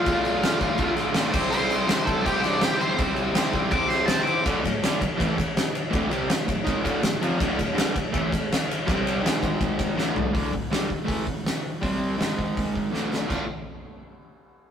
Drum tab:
CC |x-x-x-x-x-x-x-x-|x-x-x-x-x-x-x-x-|x-x-x-x-x-x-x-x-|----------------|
RD |----------------|----------------|----------------|x-x-x-x-x-x-x-x-|
HH |----------------|----------------|----------------|----------------|
SD |----o-----o-oo--|----o-----o-oo--|----o-----o-oo--|----o-------o---|
FT |----------------|----------------|----------------|----------------|
BD |o-----o-o-----o-|------o-o-------|o-----o-o-------|o-o---o-o-o-----|

CC |----------------|----------------|----------------|----------------|
RD |x-x-x-x-x-x-x-x-|x-x-x-x-x-x-x-x-|x-x-x-x-x-x-----|----------------|
HH |----------------|----------------|----------------|o---o---o---o---|
SD |----o-------o---|----o-------o---|----o-------o---|----o-------o---|
FT |----------------|----------------|--------------o-|----------------|
BD |o-----o-o-o-----|o-o---o-o-o-----|o-----o-o-o-----|o-o---o-o-o-----|

CC |----------------|x---------------|
RD |----------------|----------------|
HH |o---o---o-------|----------------|
SD |----o-------o-o-|----------------|
FT |----------------|----------------|
BD |o-----o-o-o-----|o---------------|